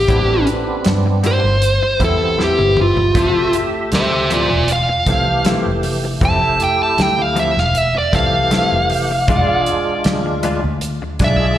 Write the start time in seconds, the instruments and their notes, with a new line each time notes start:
Already playing: lead electric guitar G4
0.08 fingered electric bass A1, clean electric guitar A2 G3 C4 E4, tonewheel organ B3 C4 D4, horn section G4 A4 B4, kick, closed hi-hat
0.28 clean electric guitar G3 C4 E4
0.47 muted clean electric guitar stroke, closed hi-hat
0.85 fingered electric bass G2, muted clean electric guitar stroke, snare, closed hi-hat
1.06 muted clean electric guitar stroke
1.23 clean electric guitar A2 G3 C4 E4, lead electric guitar C5, closed hi-hat
1.44 fingered electric bass G1, muted clean electric guitar stroke
1.62 closed hi-hat
1.83 muted clean electric guitar stroke
1.99 fingered electric bass E2, clean electric guitar A2 G3 C4, tonewheel organ B3 C4 E4, horn section G4 A4 E5, kick, closed hi-hat
2.03 clean electric guitar E4, lead electric guitar A4
2.20 muted clean electric guitar stroke
2.38 clean electric guitar A2 G3 C4 E4, snare
2.43 lead electric guitar G4
2.59 fingered electric bass G1, high tom
2.77 muted clean electric guitar stroke, mid tom
2.81 lead electric guitar F4
2.97 muted clean electric guitar stroke, floor tom
3.14 fingered electric bass F1, clean electric guitar F3 A3 C4 E4, tonewheel organ A3 G4 E5, horn section A4 E5, kick, closed hi-hat
3.35 clean electric guitar A3 C4 E4
3.53 muted clean electric guitar stroke, closed hi-hat
3.92 fingered electric bass D2, lead electric guitar C5 E5, muted clean electric guitar stroke, snare, closed hi-hat
4.12 muted clean electric guitar stroke
4.30 clean electric guitar F3 A3 C4 E4, lead electric guitar F4 D5, closed hi-hat
4.51 fingered electric bass E1, muted clean electric guitar stroke
4.68 closed hi-hat
4.72 lead electric guitar F5
4.89 muted clean electric guitar stroke
5.06 fingered electric bass C2, tonewheel organ E3 A3 G4, clean electric guitar F3 A3 C4 E4, horn section A4 F5, kick, snare, closed hi-hat
5.27 muted clean electric guitar stroke
5.45 clean electric guitar F3 A3 C4 E4, snare, closed hi-hat
5.66 fingered electric bass F1
5.83 muted clean electric guitar stroke, open hi-hat
6.04 muted clean electric guitar stroke
6.20 fingered electric bass F1, clean electric guitar F3 A3 C4 E4, tonewheel organ A3 E4 G4, horn section A4 E5, kick, closed hi-hat
6.25 lead electric guitar A5
6.41 clean electric guitar A3 C4 E4
6.60 lead electric guitar G5, muted clean electric guitar stroke, closed hi-hat
6.83 lead electric guitar A5
6.98 fingered electric bass D2, lead electric guitar G5, muted clean electric guitar stroke, snare, closed hi-hat
7.18 lead electric guitar F5, muted clean electric guitar stroke
7.36 clean electric guitar F3 A3 C4 E4, lead electric guitar E5, closed hi-hat
7.56 fingered electric bass E1, lead electric guitar F5, muted clean electric guitar stroke, snare
7.75 lead electric guitar E5, closed hi-hat
7.95 lead electric guitar D5, muted clean electric guitar stroke
8.12 fingered electric bass C2, tonewheel organ E3 A3 G4, clean electric guitar F3 A3 C4 E4, horn section A4 F5, lead electric guitar F5, kick, snare, closed hi-hat
8.33 muted clean electric guitar stroke
8.51 clean electric guitar F3 A3 C4 E4, snare, closed hi-hat
8.72 fingered electric bass F1
8.90 muted clean electric guitar stroke, open hi-hat
9.11 muted clean electric guitar stroke
9.28 fingered electric bass E1, clean electric guitar E3 G#3 D4 F4, tonewheel organ G#3 D4 F4, horn section F4 G#4 D5, kick, closed hi-hat
9.49 clean electric guitar G#3 D4 F4
9.66 muted clean electric guitar stroke, closed hi-hat
10.04 fingered electric bass D2, muted clean electric guitar stroke, snare, closed hi-hat
10.26 muted clean electric guitar stroke
10.43 clean electric guitar E3 G#3 D4 F4, closed hi-hat
10.64 fingered electric bass D2, muted clean electric guitar stroke
10.81 closed hi-hat
11.02 muted clean electric guitar stroke
11.19 fingered electric bass B1, clean electric guitar E3 G#3 D4 F4, tonewheel organ G#3 D4 G#4, horn section F4 G#4 D5, kick, snare, closed hi-hat
11.24 lead electric guitar E5
11.40 muted clean electric guitar stroke